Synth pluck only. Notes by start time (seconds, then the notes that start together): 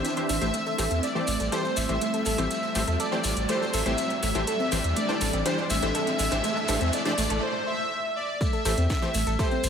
0.05 C4
0.29 D4
0.42 A3
0.54 A3
0.66 A4
0.79 A4
0.91 C4
1.28 A3
1.40 A4
1.52 A4
1.65 C4
2.01 A3
2.14 A4
2.26 A4
2.38 C4
2.75 A3
2.88 A4
3.00 A4
3.12 C4
3.49 A3
3.61 A4
3.74 A4
3.86 C4
4.23 A3
4.35 A4
4.47 A4
4.60 C4
4.97 A3
5.09 A4
5.21 A4
5.33 C4
5.70 A3
5.83 A4
5.95 A4
6.07 C4
6.44 A3
6.56 A4
6.69 A4
6.81 C4
7.18 A3
7.30 A4
8.41 A3
8.53 A4
8.65 A4
8.78 C4
9.15 A3
9.27 A4
9.39 A4
9.51 C4